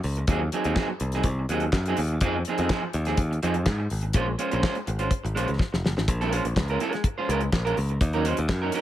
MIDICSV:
0, 0, Header, 1, 5, 480
1, 0, Start_track
1, 0, Tempo, 482703
1, 279, Time_signature, 4, 2, 24, 8
1, 8762, End_track
2, 0, Start_track
2, 0, Title_t, "Clean electric guitar"
2, 0, Program_c, 0, 27
2, 278, Note_on_c, 0, 54, 72
2, 288, Note_on_c, 0, 60, 76
2, 292, Note_on_c, 0, 63, 72
2, 300, Note_on_c, 0, 68, 91
2, 403, Note_off_c, 0, 68, 0
2, 404, Note_off_c, 0, 63, 0
2, 414, Note_off_c, 0, 60, 0
2, 420, Note_off_c, 0, 54, 0
2, 527, Note_on_c, 0, 54, 67
2, 532, Note_on_c, 0, 60, 63
2, 538, Note_on_c, 0, 63, 68
2, 539, Note_on_c, 0, 68, 77
2, 635, Note_off_c, 0, 54, 0
2, 637, Note_off_c, 0, 68, 0
2, 638, Note_off_c, 0, 60, 0
2, 641, Note_off_c, 0, 63, 0
2, 649, Note_on_c, 0, 68, 59
2, 654, Note_on_c, 0, 60, 62
2, 655, Note_on_c, 0, 63, 65
2, 663, Note_on_c, 0, 54, 55
2, 747, Note_off_c, 0, 68, 0
2, 748, Note_off_c, 0, 54, 0
2, 750, Note_off_c, 0, 60, 0
2, 750, Note_off_c, 0, 63, 0
2, 760, Note_on_c, 0, 54, 65
2, 763, Note_on_c, 0, 60, 78
2, 766, Note_on_c, 0, 63, 78
2, 771, Note_on_c, 0, 68, 86
2, 869, Note_off_c, 0, 68, 0
2, 879, Note_off_c, 0, 63, 0
2, 885, Note_off_c, 0, 60, 0
2, 901, Note_off_c, 0, 54, 0
2, 1142, Note_on_c, 0, 68, 60
2, 1144, Note_on_c, 0, 63, 58
2, 1152, Note_on_c, 0, 60, 51
2, 1155, Note_on_c, 0, 54, 44
2, 1234, Note_off_c, 0, 68, 0
2, 1235, Note_off_c, 0, 63, 0
2, 1239, Note_off_c, 0, 60, 0
2, 1240, Note_off_c, 0, 54, 0
2, 1491, Note_on_c, 0, 54, 77
2, 1499, Note_on_c, 0, 60, 71
2, 1503, Note_on_c, 0, 63, 74
2, 1508, Note_on_c, 0, 68, 79
2, 1622, Note_off_c, 0, 68, 0
2, 1627, Note_off_c, 0, 54, 0
2, 1627, Note_off_c, 0, 63, 0
2, 1629, Note_off_c, 0, 60, 0
2, 1870, Note_on_c, 0, 68, 74
2, 1879, Note_on_c, 0, 63, 74
2, 1882, Note_on_c, 0, 60, 68
2, 1887, Note_on_c, 0, 54, 68
2, 1963, Note_off_c, 0, 54, 0
2, 1966, Note_off_c, 0, 60, 0
2, 1975, Note_off_c, 0, 63, 0
2, 1975, Note_off_c, 0, 68, 0
2, 2217, Note_on_c, 0, 53, 83
2, 2228, Note_on_c, 0, 60, 82
2, 2230, Note_on_c, 0, 63, 82
2, 2235, Note_on_c, 0, 68, 88
2, 2350, Note_off_c, 0, 53, 0
2, 2350, Note_off_c, 0, 63, 0
2, 2350, Note_off_c, 0, 68, 0
2, 2353, Note_off_c, 0, 60, 0
2, 2464, Note_on_c, 0, 53, 53
2, 2467, Note_on_c, 0, 60, 64
2, 2475, Note_on_c, 0, 63, 71
2, 2482, Note_on_c, 0, 68, 68
2, 2564, Note_off_c, 0, 53, 0
2, 2566, Note_off_c, 0, 60, 0
2, 2570, Note_off_c, 0, 63, 0
2, 2574, Note_off_c, 0, 68, 0
2, 2585, Note_on_c, 0, 68, 59
2, 2586, Note_on_c, 0, 63, 58
2, 2594, Note_on_c, 0, 60, 57
2, 2597, Note_on_c, 0, 53, 50
2, 2674, Note_off_c, 0, 53, 0
2, 2676, Note_off_c, 0, 68, 0
2, 2677, Note_off_c, 0, 63, 0
2, 2681, Note_off_c, 0, 60, 0
2, 2686, Note_on_c, 0, 53, 86
2, 2694, Note_on_c, 0, 63, 85
2, 2695, Note_on_c, 0, 60, 76
2, 2699, Note_on_c, 0, 68, 78
2, 2802, Note_off_c, 0, 63, 0
2, 2803, Note_off_c, 0, 68, 0
2, 2808, Note_off_c, 0, 60, 0
2, 2825, Note_off_c, 0, 53, 0
2, 3050, Note_on_c, 0, 68, 70
2, 3055, Note_on_c, 0, 63, 59
2, 3060, Note_on_c, 0, 60, 57
2, 3064, Note_on_c, 0, 53, 48
2, 3149, Note_off_c, 0, 68, 0
2, 3151, Note_off_c, 0, 63, 0
2, 3154, Note_off_c, 0, 60, 0
2, 3156, Note_off_c, 0, 53, 0
2, 3408, Note_on_c, 0, 53, 72
2, 3411, Note_on_c, 0, 60, 71
2, 3418, Note_on_c, 0, 63, 72
2, 3422, Note_on_c, 0, 68, 77
2, 3526, Note_off_c, 0, 63, 0
2, 3527, Note_off_c, 0, 68, 0
2, 3535, Note_off_c, 0, 60, 0
2, 3546, Note_off_c, 0, 53, 0
2, 4122, Note_on_c, 0, 56, 82
2, 4123, Note_on_c, 0, 61, 87
2, 4135, Note_on_c, 0, 65, 89
2, 4136, Note_on_c, 0, 72, 91
2, 4239, Note_off_c, 0, 72, 0
2, 4240, Note_off_c, 0, 65, 0
2, 4244, Note_off_c, 0, 61, 0
2, 4263, Note_off_c, 0, 56, 0
2, 4360, Note_on_c, 0, 56, 62
2, 4366, Note_on_c, 0, 61, 61
2, 4373, Note_on_c, 0, 65, 67
2, 4378, Note_on_c, 0, 72, 64
2, 4473, Note_off_c, 0, 56, 0
2, 4474, Note_off_c, 0, 72, 0
2, 4476, Note_off_c, 0, 61, 0
2, 4479, Note_off_c, 0, 65, 0
2, 4486, Note_on_c, 0, 72, 57
2, 4494, Note_on_c, 0, 61, 55
2, 4494, Note_on_c, 0, 65, 58
2, 4501, Note_on_c, 0, 56, 54
2, 4585, Note_off_c, 0, 56, 0
2, 4587, Note_off_c, 0, 72, 0
2, 4591, Note_off_c, 0, 61, 0
2, 4591, Note_off_c, 0, 65, 0
2, 4597, Note_on_c, 0, 56, 72
2, 4607, Note_on_c, 0, 61, 75
2, 4614, Note_on_c, 0, 72, 79
2, 4615, Note_on_c, 0, 65, 74
2, 4730, Note_off_c, 0, 72, 0
2, 4733, Note_off_c, 0, 65, 0
2, 4735, Note_off_c, 0, 61, 0
2, 4741, Note_off_c, 0, 56, 0
2, 4964, Note_on_c, 0, 72, 55
2, 4967, Note_on_c, 0, 65, 56
2, 4972, Note_on_c, 0, 61, 52
2, 4979, Note_on_c, 0, 56, 42
2, 5066, Note_off_c, 0, 72, 0
2, 5067, Note_off_c, 0, 65, 0
2, 5070, Note_off_c, 0, 61, 0
2, 5073, Note_off_c, 0, 56, 0
2, 5320, Note_on_c, 0, 56, 86
2, 5328, Note_on_c, 0, 61, 66
2, 5337, Note_on_c, 0, 65, 78
2, 5340, Note_on_c, 0, 72, 89
2, 5445, Note_off_c, 0, 72, 0
2, 5452, Note_off_c, 0, 65, 0
2, 5454, Note_off_c, 0, 61, 0
2, 5462, Note_off_c, 0, 56, 0
2, 6176, Note_on_c, 0, 70, 79
2, 6183, Note_on_c, 0, 56, 70
2, 6183, Note_on_c, 0, 65, 67
2, 6184, Note_on_c, 0, 61, 68
2, 6273, Note_off_c, 0, 56, 0
2, 6281, Note_off_c, 0, 61, 0
2, 6285, Note_on_c, 0, 56, 66
2, 6292, Note_off_c, 0, 65, 0
2, 6293, Note_on_c, 0, 61, 63
2, 6295, Note_off_c, 0, 70, 0
2, 6299, Note_on_c, 0, 72, 60
2, 6304, Note_on_c, 0, 65, 65
2, 6395, Note_off_c, 0, 56, 0
2, 6399, Note_off_c, 0, 61, 0
2, 6402, Note_off_c, 0, 72, 0
2, 6404, Note_off_c, 0, 65, 0
2, 6661, Note_on_c, 0, 70, 62
2, 6664, Note_on_c, 0, 65, 52
2, 6670, Note_on_c, 0, 61, 57
2, 6673, Note_on_c, 0, 56, 55
2, 6754, Note_off_c, 0, 70, 0
2, 6755, Note_off_c, 0, 65, 0
2, 6758, Note_off_c, 0, 61, 0
2, 6760, Note_off_c, 0, 56, 0
2, 6771, Note_on_c, 0, 56, 79
2, 6773, Note_on_c, 0, 61, 81
2, 6777, Note_on_c, 0, 65, 95
2, 6787, Note_on_c, 0, 70, 91
2, 6881, Note_off_c, 0, 70, 0
2, 6890, Note_off_c, 0, 61, 0
2, 6891, Note_off_c, 0, 65, 0
2, 6967, Note_off_c, 0, 56, 0
2, 7136, Note_on_c, 0, 72, 66
2, 7143, Note_on_c, 0, 65, 58
2, 7149, Note_on_c, 0, 61, 48
2, 7151, Note_on_c, 0, 56, 47
2, 7231, Note_off_c, 0, 72, 0
2, 7234, Note_off_c, 0, 56, 0
2, 7235, Note_off_c, 0, 65, 0
2, 7237, Note_off_c, 0, 61, 0
2, 7246, Note_on_c, 0, 56, 67
2, 7250, Note_on_c, 0, 61, 78
2, 7258, Note_on_c, 0, 65, 71
2, 7265, Note_on_c, 0, 70, 80
2, 7364, Note_off_c, 0, 70, 0
2, 7371, Note_off_c, 0, 65, 0
2, 7378, Note_off_c, 0, 61, 0
2, 7384, Note_off_c, 0, 56, 0
2, 7607, Note_on_c, 0, 70, 85
2, 7619, Note_on_c, 0, 65, 68
2, 7620, Note_on_c, 0, 61, 61
2, 7622, Note_on_c, 0, 56, 61
2, 7713, Note_off_c, 0, 56, 0
2, 7717, Note_off_c, 0, 61, 0
2, 7722, Note_off_c, 0, 65, 0
2, 7724, Note_off_c, 0, 70, 0
2, 8091, Note_on_c, 0, 70, 82
2, 8099, Note_on_c, 0, 63, 83
2, 8104, Note_on_c, 0, 61, 70
2, 8108, Note_on_c, 0, 54, 72
2, 8190, Note_off_c, 0, 54, 0
2, 8196, Note_off_c, 0, 61, 0
2, 8200, Note_off_c, 0, 63, 0
2, 8202, Note_on_c, 0, 54, 62
2, 8208, Note_on_c, 0, 61, 54
2, 8212, Note_on_c, 0, 63, 65
2, 8216, Note_off_c, 0, 70, 0
2, 8220, Note_on_c, 0, 72, 59
2, 8313, Note_off_c, 0, 54, 0
2, 8316, Note_off_c, 0, 61, 0
2, 8318, Note_off_c, 0, 63, 0
2, 8322, Note_off_c, 0, 72, 0
2, 8568, Note_on_c, 0, 70, 68
2, 8578, Note_on_c, 0, 63, 65
2, 8585, Note_on_c, 0, 61, 60
2, 8588, Note_on_c, 0, 54, 51
2, 8667, Note_off_c, 0, 70, 0
2, 8672, Note_off_c, 0, 63, 0
2, 8675, Note_off_c, 0, 61, 0
2, 8676, Note_off_c, 0, 54, 0
2, 8690, Note_on_c, 0, 54, 71
2, 8695, Note_on_c, 0, 61, 88
2, 8698, Note_on_c, 0, 63, 92
2, 8704, Note_on_c, 0, 70, 83
2, 8762, Note_off_c, 0, 54, 0
2, 8762, Note_off_c, 0, 61, 0
2, 8762, Note_off_c, 0, 63, 0
2, 8762, Note_off_c, 0, 70, 0
2, 8762, End_track
3, 0, Start_track
3, 0, Title_t, "Picked electric bass"
3, 0, Program_c, 1, 34
3, 41, Note_on_c, 1, 37, 96
3, 241, Note_off_c, 1, 37, 0
3, 276, Note_on_c, 1, 39, 105
3, 479, Note_off_c, 1, 39, 0
3, 649, Note_on_c, 1, 39, 95
3, 743, Note_off_c, 1, 39, 0
3, 1001, Note_on_c, 1, 36, 80
3, 1202, Note_off_c, 1, 36, 0
3, 1238, Note_on_c, 1, 36, 103
3, 1440, Note_off_c, 1, 36, 0
3, 1483, Note_on_c, 1, 39, 71
3, 1683, Note_off_c, 1, 39, 0
3, 1721, Note_on_c, 1, 42, 85
3, 1922, Note_off_c, 1, 42, 0
3, 1970, Note_on_c, 1, 39, 83
3, 2167, Note_off_c, 1, 39, 0
3, 2204, Note_on_c, 1, 41, 107
3, 2404, Note_off_c, 1, 41, 0
3, 2573, Note_on_c, 1, 41, 96
3, 2666, Note_off_c, 1, 41, 0
3, 2925, Note_on_c, 1, 39, 78
3, 3125, Note_off_c, 1, 39, 0
3, 3161, Note_on_c, 1, 39, 83
3, 3363, Note_off_c, 1, 39, 0
3, 3413, Note_on_c, 1, 41, 99
3, 3647, Note_off_c, 1, 41, 0
3, 3647, Note_on_c, 1, 44, 77
3, 3846, Note_off_c, 1, 44, 0
3, 3890, Note_on_c, 1, 32, 95
3, 4088, Note_off_c, 1, 32, 0
3, 4121, Note_on_c, 1, 34, 109
3, 4322, Note_off_c, 1, 34, 0
3, 4506, Note_on_c, 1, 34, 90
3, 4594, Note_off_c, 1, 34, 0
3, 4850, Note_on_c, 1, 32, 75
3, 5048, Note_off_c, 1, 32, 0
3, 5215, Note_on_c, 1, 32, 84
3, 5307, Note_off_c, 1, 32, 0
3, 5329, Note_on_c, 1, 34, 84
3, 5433, Note_off_c, 1, 34, 0
3, 5458, Note_on_c, 1, 37, 82
3, 5549, Note_off_c, 1, 37, 0
3, 5704, Note_on_c, 1, 29, 75
3, 5792, Note_off_c, 1, 29, 0
3, 5811, Note_on_c, 1, 30, 88
3, 5914, Note_off_c, 1, 30, 0
3, 5934, Note_on_c, 1, 32, 88
3, 6026, Note_off_c, 1, 32, 0
3, 6051, Note_on_c, 1, 34, 115
3, 6354, Note_off_c, 1, 34, 0
3, 6413, Note_on_c, 1, 34, 74
3, 6506, Note_off_c, 1, 34, 0
3, 6527, Note_on_c, 1, 37, 78
3, 6725, Note_off_c, 1, 37, 0
3, 7248, Note_on_c, 1, 37, 76
3, 7446, Note_off_c, 1, 37, 0
3, 7489, Note_on_c, 1, 34, 79
3, 7686, Note_off_c, 1, 34, 0
3, 7732, Note_on_c, 1, 37, 93
3, 7928, Note_off_c, 1, 37, 0
3, 7966, Note_on_c, 1, 39, 111
3, 8271, Note_off_c, 1, 39, 0
3, 8340, Note_on_c, 1, 39, 84
3, 8429, Note_off_c, 1, 39, 0
3, 8447, Note_on_c, 1, 42, 82
3, 8645, Note_off_c, 1, 42, 0
3, 8762, End_track
4, 0, Start_track
4, 0, Title_t, "Muted clean electric guitar strokes"
4, 172, Note_on_c, 9, 29, 38
4, 272, Note_off_c, 9, 29, 0
4, 415, Note_on_c, 9, 29, 43
4, 515, Note_off_c, 9, 29, 0
4, 881, Note_on_c, 9, 29, 46
4, 981, Note_off_c, 9, 29, 0
4, 1005, Note_on_c, 9, 29, 34
4, 1104, Note_off_c, 9, 29, 0
4, 1382, Note_on_c, 9, 29, 40
4, 1481, Note_off_c, 9, 29, 0
4, 1634, Note_on_c, 9, 29, 45
4, 1733, Note_off_c, 9, 29, 0
4, 1741, Note_on_c, 9, 29, 43
4, 1841, Note_off_c, 9, 29, 0
4, 1975, Note_on_c, 9, 29, 36
4, 2075, Note_off_c, 9, 29, 0
4, 2113, Note_on_c, 9, 29, 45
4, 2212, Note_off_c, 9, 29, 0
4, 2362, Note_on_c, 9, 29, 47
4, 2461, Note_off_c, 9, 29, 0
4, 2814, Note_on_c, 9, 29, 45
4, 2914, Note_off_c, 9, 29, 0
4, 2930, Note_on_c, 9, 29, 37
4, 3030, Note_off_c, 9, 29, 0
4, 3291, Note_on_c, 9, 29, 48
4, 3391, Note_off_c, 9, 29, 0
4, 3538, Note_on_c, 9, 29, 44
4, 3637, Note_off_c, 9, 29, 0
4, 3645, Note_on_c, 9, 29, 36
4, 3745, Note_off_c, 9, 29, 0
4, 3763, Note_on_c, 9, 29, 47
4, 3863, Note_off_c, 9, 29, 0
4, 4004, Note_on_c, 9, 29, 37
4, 4104, Note_off_c, 9, 29, 0
4, 4250, Note_on_c, 9, 29, 43
4, 4350, Note_off_c, 9, 29, 0
4, 4741, Note_on_c, 9, 29, 44
4, 4839, Note_off_c, 9, 29, 0
4, 4839, Note_on_c, 9, 29, 42
4, 4939, Note_off_c, 9, 29, 0
4, 5206, Note_on_c, 9, 29, 43
4, 5306, Note_off_c, 9, 29, 0
4, 5457, Note_on_c, 9, 29, 41
4, 5557, Note_off_c, 9, 29, 0
4, 5565, Note_on_c, 9, 29, 40
4, 5664, Note_off_c, 9, 29, 0
4, 5693, Note_on_c, 9, 29, 33
4, 5792, Note_off_c, 9, 29, 0
4, 5936, Note_on_c, 9, 29, 42
4, 6036, Note_off_c, 9, 29, 0
4, 6052, Note_on_c, 9, 29, 36
4, 6152, Note_off_c, 9, 29, 0
4, 6414, Note_on_c, 9, 29, 55
4, 6513, Note_off_c, 9, 29, 0
4, 6523, Note_on_c, 9, 29, 39
4, 6623, Note_off_c, 9, 29, 0
4, 6892, Note_on_c, 9, 29, 44
4, 6992, Note_off_c, 9, 29, 0
4, 7012, Note_on_c, 9, 29, 44
4, 7111, Note_off_c, 9, 29, 0
4, 7375, Note_on_c, 9, 29, 45
4, 7475, Note_off_c, 9, 29, 0
4, 7488, Note_on_c, 9, 29, 44
4, 7588, Note_off_c, 9, 29, 0
4, 7725, Note_on_c, 9, 29, 34
4, 7825, Note_off_c, 9, 29, 0
4, 7857, Note_on_c, 9, 29, 41
4, 7956, Note_off_c, 9, 29, 0
4, 7976, Note_on_c, 9, 29, 32
4, 8076, Note_off_c, 9, 29, 0
4, 8337, Note_on_c, 9, 29, 40
4, 8435, Note_off_c, 9, 29, 0
4, 8435, Note_on_c, 9, 29, 40
4, 8535, Note_off_c, 9, 29, 0
4, 8762, End_track
5, 0, Start_track
5, 0, Title_t, "Drums"
5, 35, Note_on_c, 9, 46, 61
5, 134, Note_off_c, 9, 46, 0
5, 154, Note_on_c, 9, 42, 41
5, 254, Note_off_c, 9, 42, 0
5, 273, Note_on_c, 9, 42, 89
5, 276, Note_on_c, 9, 36, 121
5, 372, Note_off_c, 9, 42, 0
5, 375, Note_off_c, 9, 36, 0
5, 519, Note_on_c, 9, 42, 81
5, 618, Note_off_c, 9, 42, 0
5, 640, Note_on_c, 9, 42, 47
5, 739, Note_off_c, 9, 42, 0
5, 756, Note_on_c, 9, 36, 110
5, 760, Note_on_c, 9, 38, 97
5, 762, Note_on_c, 9, 39, 77
5, 855, Note_off_c, 9, 36, 0
5, 859, Note_off_c, 9, 38, 0
5, 862, Note_off_c, 9, 39, 0
5, 993, Note_on_c, 9, 42, 63
5, 1092, Note_off_c, 9, 42, 0
5, 1112, Note_on_c, 9, 42, 47
5, 1131, Note_on_c, 9, 38, 31
5, 1212, Note_off_c, 9, 42, 0
5, 1227, Note_on_c, 9, 42, 78
5, 1230, Note_off_c, 9, 38, 0
5, 1230, Note_on_c, 9, 36, 109
5, 1327, Note_off_c, 9, 42, 0
5, 1330, Note_off_c, 9, 36, 0
5, 1482, Note_on_c, 9, 42, 62
5, 1581, Note_off_c, 9, 42, 0
5, 1592, Note_on_c, 9, 42, 37
5, 1691, Note_off_c, 9, 42, 0
5, 1716, Note_on_c, 9, 36, 101
5, 1718, Note_on_c, 9, 38, 98
5, 1720, Note_on_c, 9, 39, 76
5, 1815, Note_off_c, 9, 36, 0
5, 1817, Note_off_c, 9, 38, 0
5, 1820, Note_off_c, 9, 39, 0
5, 1846, Note_on_c, 9, 42, 40
5, 1945, Note_off_c, 9, 42, 0
5, 1955, Note_on_c, 9, 46, 64
5, 2055, Note_off_c, 9, 46, 0
5, 2072, Note_on_c, 9, 42, 40
5, 2171, Note_off_c, 9, 42, 0
5, 2193, Note_on_c, 9, 42, 85
5, 2199, Note_on_c, 9, 36, 120
5, 2293, Note_off_c, 9, 42, 0
5, 2298, Note_off_c, 9, 36, 0
5, 2435, Note_on_c, 9, 42, 74
5, 2534, Note_off_c, 9, 42, 0
5, 2563, Note_on_c, 9, 42, 47
5, 2662, Note_off_c, 9, 42, 0
5, 2681, Note_on_c, 9, 36, 106
5, 2684, Note_on_c, 9, 38, 97
5, 2686, Note_on_c, 9, 39, 78
5, 2781, Note_off_c, 9, 36, 0
5, 2783, Note_off_c, 9, 38, 0
5, 2786, Note_off_c, 9, 39, 0
5, 2917, Note_on_c, 9, 42, 62
5, 3017, Note_off_c, 9, 42, 0
5, 3035, Note_on_c, 9, 42, 43
5, 3054, Note_on_c, 9, 38, 34
5, 3135, Note_off_c, 9, 42, 0
5, 3153, Note_off_c, 9, 38, 0
5, 3156, Note_on_c, 9, 42, 75
5, 3158, Note_on_c, 9, 36, 112
5, 3255, Note_off_c, 9, 42, 0
5, 3257, Note_off_c, 9, 36, 0
5, 3307, Note_on_c, 9, 42, 36
5, 3407, Note_off_c, 9, 42, 0
5, 3407, Note_on_c, 9, 42, 74
5, 3506, Note_off_c, 9, 42, 0
5, 3521, Note_on_c, 9, 42, 38
5, 3621, Note_off_c, 9, 42, 0
5, 3641, Note_on_c, 9, 36, 93
5, 3642, Note_on_c, 9, 38, 103
5, 3644, Note_on_c, 9, 39, 86
5, 3740, Note_off_c, 9, 36, 0
5, 3741, Note_off_c, 9, 38, 0
5, 3744, Note_off_c, 9, 39, 0
5, 3880, Note_on_c, 9, 46, 58
5, 3979, Note_off_c, 9, 46, 0
5, 3992, Note_on_c, 9, 42, 41
5, 4091, Note_off_c, 9, 42, 0
5, 4111, Note_on_c, 9, 42, 93
5, 4120, Note_on_c, 9, 36, 123
5, 4210, Note_off_c, 9, 42, 0
5, 4219, Note_off_c, 9, 36, 0
5, 4363, Note_on_c, 9, 42, 78
5, 4462, Note_off_c, 9, 42, 0
5, 4490, Note_on_c, 9, 42, 44
5, 4589, Note_off_c, 9, 42, 0
5, 4605, Note_on_c, 9, 36, 104
5, 4614, Note_on_c, 9, 38, 96
5, 4617, Note_on_c, 9, 39, 82
5, 4704, Note_off_c, 9, 36, 0
5, 4714, Note_off_c, 9, 38, 0
5, 4716, Note_off_c, 9, 39, 0
5, 4725, Note_on_c, 9, 42, 35
5, 4825, Note_off_c, 9, 42, 0
5, 4845, Note_on_c, 9, 42, 72
5, 4945, Note_off_c, 9, 42, 0
5, 4961, Note_on_c, 9, 42, 44
5, 5061, Note_off_c, 9, 42, 0
5, 5079, Note_on_c, 9, 36, 111
5, 5079, Note_on_c, 9, 42, 72
5, 5178, Note_off_c, 9, 36, 0
5, 5179, Note_off_c, 9, 42, 0
5, 5226, Note_on_c, 9, 42, 39
5, 5326, Note_off_c, 9, 42, 0
5, 5341, Note_on_c, 9, 42, 67
5, 5441, Note_off_c, 9, 42, 0
5, 5447, Note_on_c, 9, 42, 36
5, 5547, Note_off_c, 9, 42, 0
5, 5562, Note_on_c, 9, 36, 105
5, 5576, Note_on_c, 9, 38, 58
5, 5662, Note_off_c, 9, 36, 0
5, 5675, Note_off_c, 9, 38, 0
5, 5705, Note_on_c, 9, 38, 64
5, 5804, Note_off_c, 9, 38, 0
5, 5822, Note_on_c, 9, 38, 92
5, 5922, Note_off_c, 9, 38, 0
5, 5945, Note_on_c, 9, 38, 81
5, 6044, Note_off_c, 9, 38, 0
5, 6045, Note_on_c, 9, 36, 114
5, 6049, Note_on_c, 9, 42, 90
5, 6145, Note_off_c, 9, 36, 0
5, 6148, Note_off_c, 9, 42, 0
5, 6179, Note_on_c, 9, 42, 35
5, 6279, Note_off_c, 9, 42, 0
5, 6290, Note_on_c, 9, 42, 83
5, 6390, Note_off_c, 9, 42, 0
5, 6414, Note_on_c, 9, 42, 47
5, 6513, Note_off_c, 9, 42, 0
5, 6525, Note_on_c, 9, 36, 94
5, 6536, Note_on_c, 9, 38, 112
5, 6538, Note_on_c, 9, 39, 75
5, 6624, Note_off_c, 9, 36, 0
5, 6635, Note_off_c, 9, 38, 0
5, 6638, Note_off_c, 9, 39, 0
5, 6643, Note_on_c, 9, 42, 35
5, 6742, Note_off_c, 9, 42, 0
5, 6765, Note_on_c, 9, 42, 71
5, 6865, Note_off_c, 9, 42, 0
5, 6887, Note_on_c, 9, 42, 43
5, 6906, Note_on_c, 9, 38, 32
5, 6987, Note_off_c, 9, 42, 0
5, 7000, Note_on_c, 9, 36, 108
5, 7000, Note_on_c, 9, 42, 79
5, 7005, Note_off_c, 9, 38, 0
5, 7099, Note_off_c, 9, 36, 0
5, 7099, Note_off_c, 9, 42, 0
5, 7256, Note_on_c, 9, 42, 65
5, 7355, Note_off_c, 9, 42, 0
5, 7364, Note_on_c, 9, 42, 40
5, 7464, Note_off_c, 9, 42, 0
5, 7483, Note_on_c, 9, 36, 98
5, 7489, Note_on_c, 9, 38, 103
5, 7491, Note_on_c, 9, 39, 78
5, 7583, Note_off_c, 9, 36, 0
5, 7588, Note_off_c, 9, 38, 0
5, 7591, Note_off_c, 9, 39, 0
5, 7624, Note_on_c, 9, 42, 37
5, 7724, Note_off_c, 9, 42, 0
5, 7728, Note_on_c, 9, 46, 55
5, 7828, Note_off_c, 9, 46, 0
5, 7844, Note_on_c, 9, 42, 36
5, 7944, Note_off_c, 9, 42, 0
5, 7963, Note_on_c, 9, 36, 123
5, 7966, Note_on_c, 9, 42, 85
5, 8063, Note_off_c, 9, 36, 0
5, 8065, Note_off_c, 9, 42, 0
5, 8086, Note_on_c, 9, 42, 31
5, 8186, Note_off_c, 9, 42, 0
5, 8203, Note_on_c, 9, 42, 76
5, 8302, Note_off_c, 9, 42, 0
5, 8323, Note_on_c, 9, 42, 52
5, 8422, Note_off_c, 9, 42, 0
5, 8440, Note_on_c, 9, 36, 104
5, 8445, Note_on_c, 9, 38, 108
5, 8447, Note_on_c, 9, 39, 88
5, 8540, Note_off_c, 9, 36, 0
5, 8544, Note_off_c, 9, 38, 0
5, 8547, Note_off_c, 9, 39, 0
5, 8672, Note_on_c, 9, 42, 65
5, 8762, Note_off_c, 9, 42, 0
5, 8762, End_track
0, 0, End_of_file